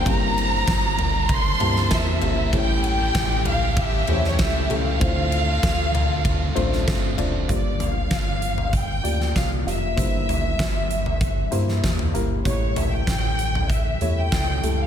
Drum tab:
RD |x-x-x-x-x-x-x-x-|x-x-x-x-x-x-x-x-|x-x-x-x-x-x-x-x-|----------------|
HH |----------------|----------------|----------------|x-x-x-x-x-x-x-x-|
SD |----o------oo---|----o------oo---|----o------oo---|----o------oo---|
FT |------o---o---o-|------o---o---o-|------o---o---o-|--o----o--------|
BD |o---o---o---o---|o---o---o---o---|o---o---o---o---|o---o---o---o---|

RD |----------------|----------------|
HH |x-x-x-x-x-x-x-x-|x-x-x-x-x-x-x-x-|
SD |----o------oo---|----o-------o---|
FT |--o----o-----o--|--o----o--------|
BD |o---o---o---o---|o---o---o---o---|